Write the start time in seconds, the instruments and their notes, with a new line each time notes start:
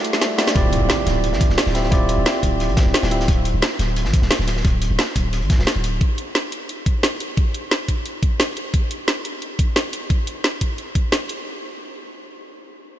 Already playing: string section G3 D4 A4 F#5, tine electric piano A3 E4 F#4 G4 D5 E5
0.04 closed hi-hat, tambourine
0.13 snare, closed hi-hat
0.21 snare, closed hi-hat, tambourine
0.38 tine electric piano A3 E4 F#4 G4 D5, snare, closed hi-hat, open hi-hat, tambourine
0.47 snare, closed hi-hat, tambourine
0.54 808-style bass D1, tine electric piano C4 E4 F4 G4 D5, kick, closed hi-hat, impact
0.72 closed hi-hat
0.81 808-style bass D1
0.89 snare, closed hi-hat
1.07 808-style bass D1, snare, closed hi-hat
1.24 closed hi-hat
1.33 808-style bass A1, snare
1.41 kick, closed hi-hat
1.50 808-style bass D1, snare
1.58 snare, closed hi-hat
1.66 808-style bass D1, snare
1.74 tine electric piano C4 E4 F4 G4 E5, snare, closed hi-hat
1.84 snare
1.91 808-style bass D1, tine electric piano C4 E4 F4 G4 D5, kick, closed hi-hat
2.09 closed hi-hat
2.18 808-style bass D1
2.26 snare, closed hi-hat
2.43 808-style bass D1, kick, closed hi-hat
2.60 closed hi-hat
2.69 808-style bass A1, closed hi-hat
2.77 kick, snare, closed hi-hat
2.86 808-style bass D1
2.94 snare, closed hi-hat
3.03 808-style bass D1, snare, closed hi-hat
3.11 tine electric piano C4 E4 F4 G4 E5, closed hi-hat
3.20 snare, closed hi-hat
3.28 808-style bass D1, kick, closed hi-hat
3.45 closed hi-hat
3.54 808-style bass D1
3.62 snare, closed hi-hat
3.79 808-style bass D1, snare, closed hi-hat
3.96 closed hi-hat
4.05 808-style bass A1, snare
4.13 kick, closed hi-hat
4.22 808-style bass D1, snare
4.30 snare, closed hi-hat
4.39 808-style bass D1, snare
4.47 snare, closed hi-hat
4.57 snare
4.65 808-style bass D1, kick, closed hi-hat
4.82 closed hi-hat
4.90 808-style bass D1
4.98 snare, closed hi-hat
5.15 808-style bass D1, kick, closed hi-hat
5.33 closed hi-hat
5.42 808-style bass A1, closed hi-hat
5.50 kick, snare, closed hi-hat
5.59 808-style bass D1, snare
5.67 snare, closed hi-hat
5.76 808-style bass D1
5.84 closed hi-hat
6.01 kick, closed hi-hat
6.18 closed hi-hat
6.35 snare, closed hi-hat
6.52 closed hi-hat
6.69 closed hi-hat
6.86 kick, closed hi-hat
7.03 snare, closed hi-hat
7.20 closed hi-hat
7.37 kick, closed hi-hat
7.54 closed hi-hat
7.71 snare, closed hi-hat
7.88 kick, closed hi-hat
8.06 closed hi-hat
8.23 kick, closed hi-hat
8.40 snare, closed hi-hat
8.57 closed hi-hat
8.74 kick, closed hi-hat
8.91 closed hi-hat
9.08 snare, closed hi-hat
9.25 closed hi-hat
9.42 closed hi-hat
9.59 kick, closed hi-hat
9.76 snare, closed hi-hat
9.93 closed hi-hat
10.10 kick, closed hi-hat
10.27 closed hi-hat
10.44 snare, closed hi-hat
10.61 kick, closed hi-hat
10.78 closed hi-hat
10.95 kick, closed hi-hat
11.12 snare, closed hi-hat
11.29 closed hi-hat